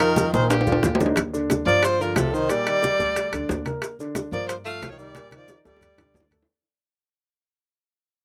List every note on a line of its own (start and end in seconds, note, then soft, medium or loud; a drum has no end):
0.00 0.28 F2 medium
0.00 0.29 D#3 medium
0.00 0.28 D#3 medium
0.00 0.28 D#4 medium
0.00 0.28 F4 medium
0.00 0.30 A#4 loud
0.00 high bongo soft
0.00 high conga soft
0.00 high timbale medium
0.00 maracas soft
0.16 high bongo medium
0.16 high conga medium
0.16 low timbale medium
0.16 maracas medium
0.33 0.80 A#1 medium
0.33 0.61 A#2 medium
0.33 0.49 D#3 medium
0.33 0.61 A#3 medium
0.33 0.62 A#4 medium
0.33 0.50 C5 medium
0.33 high conga medium
0.33 maracas soft
0.50 0.97 A#2 medium
0.50 0.97 G4 medium
0.50 high bongo medium
0.50 high timbale medium
0.50 maracas medium
0.61 high timbale medium
0.67 0.95 D3 medium
0.67 0.94 D4 medium
0.67 0.95 F4 medium
0.67 high bongo soft
0.67 low conga medium
0.67 maracas soft
0.72 high timbale medium
0.83 1.13 D#2 medium
0.83 high bongo medium
0.83 low bongo medium
0.83 low conga medium
0.83 maracas medium
0.95 low timbale medium
1.00 1.14 D3 medium
1.00 1.14 D4 medium
1.00 1.14 D#4 medium
1.00 high bongo soft
1.00 low conga medium
1.00 maracas soft
1.06 low timbale medium
1.16 1.63 D#2 medium
1.16 high bongo medium
1.16 high conga soft
1.16 high timbale medium
1.16 maracas medium
1.33 1.61 D3 medium
1.33 1.61 D4 medium
1.33 high conga soft
1.33 maracas soft
1.50 high bongo medium
1.50 high conga medium
1.50 high timbale medium
1.50 low timbale medium
1.50 maracas medium
1.66 2.13 G2 medium
1.66 1.83 F3 medium
1.66 1.94 A#3 medium
1.66 1.94 A#4 medium
1.66 1.85 D5 loud
1.66 high conga soft
1.66 maracas soft
1.83 2.01 F3 medium
1.83 2.03 C5 loud
1.83 high bongo medium
1.83 high conga soft
1.83 high timbale medium
1.83 maracas medium
2.00 2.16 D3 medium
2.00 2.28 F3 medium
2.00 2.28 F4 medium
2.00 2.16 A#4 medium
2.00 high conga soft
2.00 maracas soft
2.16 2.46 C2 medium
2.16 2.33 C3 medium
2.16 2.35 A4 medium
2.16 high bongo medium
2.16 low bongo medium
2.16 high conga medium
2.16 high timbale medium
2.16 low timbale medium
2.16 maracas medium
2.32 2.52 D#3 medium
2.32 2.47 D#3 medium
2.32 2.47 D#4 medium
2.32 2.51 C5 medium
2.32 high conga soft
2.32 maracas soft
2.49 2.63 A#2 medium
2.49 3.50 G3 medium
2.49 2.64 A#3 medium
2.49 3.49 D5 loud
2.49 high bongo medium
2.49 high conga soft
2.49 high timbale medium
2.49 maracas medium
2.66 2.94 D#3 medium
2.66 2.94 D#4 medium
2.66 high bongo soft
2.66 high conga soft
2.66 high timbale loud
2.66 maracas soft
2.83 high bongo medium
2.83 high conga medium
2.83 low timbale medium
2.83 maracas medium
2.99 3.30 D2 medium
2.99 3.27 A3 medium
2.99 3.27 A4 medium
2.99 high conga soft
2.99 maracas soft
3.16 high bongo medium
3.16 high conga soft
3.16 high timbale medium
3.16 maracas medium
3.32 3.48 D2 medium
3.32 3.60 D3 medium
3.32 3.60 D4 medium
3.32 high bongo soft
3.32 high conga soft
3.32 high timbale loud
3.32 maracas soft
3.49 3.79 D#2 medium
3.49 high bongo medium
3.49 low bongo medium
3.49 high conga soft
3.49 low timbale medium
3.49 maracas medium
3.65 3.93 A#3 medium
3.65 3.93 A#4 medium
3.65 high bongo soft
3.65 high conga medium
3.65 high timbale medium
3.65 maracas soft
3.82 high bongo medium
3.82 high conga soft
3.82 high timbale medium
3.82 maracas medium
3.99 4.27 D3 medium
3.99 4.27 D4 medium
3.99 high conga soft
3.99 maracas soft
4.15 high bongo medium
4.15 high conga medium
4.15 high timbale medium
4.15 low timbale medium
4.15 maracas medium
4.32 4.78 G2 medium
4.32 4.48 F3 medium
4.32 4.60 A#3 medium
4.32 4.60 A#4 medium
4.32 4.47 D5 loud
4.32 high conga soft
4.32 maracas soft
4.48 4.57 F3 medium
4.48 4.56 C5 medium
4.48 high bongo medium
4.48 high conga soft
4.48 high timbale loud
4.48 maracas medium
4.64 4.93 F3 medium
4.64 4.90 A3 medium
4.64 4.93 F4 medium
4.64 4.89 F5 loud
4.64 high conga soft
4.64 maracas soft
4.82 5.11 C2 medium
4.82 high bongo medium
4.82 low bongo medium
4.82 high conga medium
4.82 high timbale loud
4.82 low timbale medium
4.82 maracas medium
4.90 5.01 D#3 medium
4.90 4.99 C#5 medium
4.97 5.12 D#3 medium
4.97 5.36 G3 medium
4.97 5.13 D#4 medium
4.97 5.36 D5 loud
4.97 high conga soft
4.97 maracas soft
5.15 5.29 A#2 medium
5.15 5.30 A#3 medium
5.15 high bongo medium
5.15 high conga loud
5.15 high timbale medium
5.15 maracas medium
5.31 5.59 D#3 medium
5.31 5.60 D#4 medium
5.31 high bongo soft
5.31 high conga medium
5.31 high timbale medium
5.31 maracas soft
5.37 5.58 F3 medium
5.37 5.58 D5 medium
5.48 high bongo medium
5.48 high conga medium
5.48 low timbale medium
5.48 maracas medium
5.65 5.96 D2 medium
5.65 6.28 G3 medium
5.65 5.92 A3 medium
5.65 5.92 A4 medium
5.65 6.28 D5 medium
5.65 high bongo medium
5.65 maracas soft
5.77 high bongo medium
5.81 low conga loud
5.81 high timbale medium
5.81 maracas medium
5.98 6.14 C2 medium
5.98 6.26 D3 medium
5.98 6.26 D4 medium
5.98 low bongo loud
5.98 low conga loud
5.98 high timbale medium
5.98 maracas soft
6.14 6.44 D2 medium
6.14 low conga medium
6.14 low timbale medium
6.14 maracas medium
6.20 low bongo medium
6.31 6.46 A3 medium
6.31 6.46 A4 medium
6.31 low conga medium
6.31 high timbale medium
6.31 maracas soft
6.42 low bongo medium